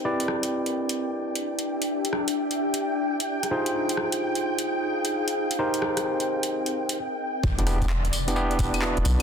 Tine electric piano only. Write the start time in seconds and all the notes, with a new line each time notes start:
0.05 E4 G4 B4 D5
3.51 D#4 F4 G#4 C5
5.59 D#4 G4 A#4 C5
7.58 B3 D4 E4 G4
7.67 B3 D4 E4 G4
8.28 B3 D4 E4 G4
8.36 B3 D4 E4 G4
8.82 B3 D4 E4 F#4